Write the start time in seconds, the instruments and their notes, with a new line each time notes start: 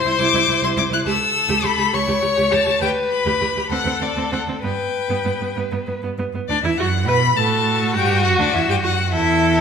Already playing: violin C5 C6
0.05 cello C2, viola E4
0.18 cello C2, viola E4, violin D6
0.34 cello C2, viola E4
0.48 cello C2, viola E4
0.63 cello C2, viola E4, violin C6
0.77 cello C2, viola E4, violin D6
0.91 cello C2, viola E4, violin F#6
1.06 cello C#2, viola G4, violin A4 E6
1.49 cello C#2, viola G4
1.63 cello C#2, viola G4, violin B5
1.78 cello C#2, viola G4
1.93 cello C#2, viola G4, violin C#5 C#6
2.08 cello C#2, viola G4
2.22 cello C#2, viola G4
2.37 cello C#2, viola G4
2.51 cello C#2, viola G4, violin A5
2.66 cello C#2, viola G4
2.81 cello D2, viola G4, violin B4 G5
3.11 violin B5
3.26 cello D2, viola G4
3.41 cello D2, viola G4
3.56 cello D2, viola G4
3.70 cello D2, viola C4, violin A4 F#5
3.85 cello D2, viola C4
4.00 cello D2, viola C4, violin D5
4.16 cello D2, viola C4
4.31 cello D2, viola C4, violin F#5
4.47 cello D2, viola C4
4.62 cello G2, viola B3, violin B4 G5
5.09 cello G2, viola B3
5.25 cello G2, viola B3
5.40 cello G2, viola B3
5.56 cello G2, viola B3
5.71 cello G2, viola B3
5.87 cello G2, viola B3
6.02 cello G2, viola B3
6.18 cello G2, viola B3
6.33 cello G2, viola B3
6.48 cello D2, viola D4, violin D5
6.63 cello E2, viola E4, violin E5
6.78 cello F#2, viola F#4, violin F#5
7.07 cello B2, viola B4, violin B5
7.36 cello A2, violin F#4 A5, viola A4
7.95 cello G2, viola G4, violin G5
8.24 cello F#2, viola F#4, violin F#5
8.39 cello D2, viola D4, violin D5
8.53 cello E2, viola E4, violin E5
8.69 cello G2, viola G4, violin G5
8.82 cello F#2, viola F#4, violin F#5
9.12 cello E2, viola E4, violin A4 E5